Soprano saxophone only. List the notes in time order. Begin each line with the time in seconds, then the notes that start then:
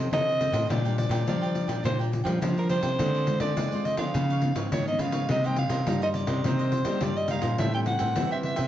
0.13 D#5
0.69 D5
0.98 D5
1.29 D5
1.85 C5
2.58 A#4
2.70 C5
3.41 D5
3.85 D#5
3.98 F5
4.73 C#5
4.88 D#5
5.01 F5
5.31 D#5
5.46 G5
5.58 F5
6.03 D#5
6.15 D5
6.46 C5
7.03 D5
7.17 D#5
7.30 F5
7.59 E5
7.74 G5
7.87 F#5
8.32 E5
8.45 E5